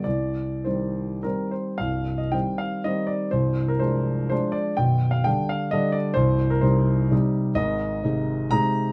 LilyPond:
<<
  \new Staff \with { instrumentName = "Grand piano" } { \time 3/4 \key c \minor \tempo 4 = 124 d''4 c''4 bes'8 c''8 | f''8. ees''16 g''8 f''8 ees''8 d''8 | c''8. bes'16 c''4 c''8 d''8 | g''8. f''16 g''8 f''8 ees''8 d''8 |
c''8. bes'16 c''4 r4 | \key aes \major ees''2 bes''4 | }
  \new Staff \with { instrumentName = "Grand piano" } { \clef bass \time 3/4 \key c \minor c,4 <ees g c'>4 <ees g c'>4 | <c,, c,>4 <ees g c'>4 <ees g c'>4 | <c,, c,>4 <f aes d'>4 <f aes d'>4 | <b,,, b,,>4 <d g d'>4 <d g d'>4 |
<c,, c,>4 <c g ees'>4 <c g ees'>4 | \key aes \major <aes,, aes,>4 <c aes ees'>4 <c aes ees'>4 | }
>>